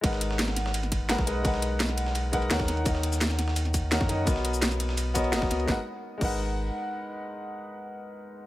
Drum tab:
CC |----------------|----------------|----------------|----------------|
RD |x-x-x-x-xxx-x-x-|x-x-xxx-x-xxx-xx|x-x-x-x-xxx-x-x-|x-x-xxx-x-xxx-xx|
HH |x-x-x-x-x-x-x-x-|x-x-x-x-x-x-x-x-|x-x-x-x-x-x-x-x-|x-x-x-x-x-x-x-x-|
SH |----------------|----------------|x--xxx--x-x-x---|x--xxx--x-x-x---|
SD |-o-ooooo-o--oo--|-o--oo-o----ooo-|-o-ooooo-o--oo--|-o--oo-o----ooo-|
BD |o---------o--o--|o---------o--o--|o---------o--o--|o---------o--o--|

CC |------x---------|----------------|
RD |----------------|----------------|
HH |----------------|----------------|
SH |----------------|----------------|
SD |o---------------|----------------|
BD |o-----o---------|----------------|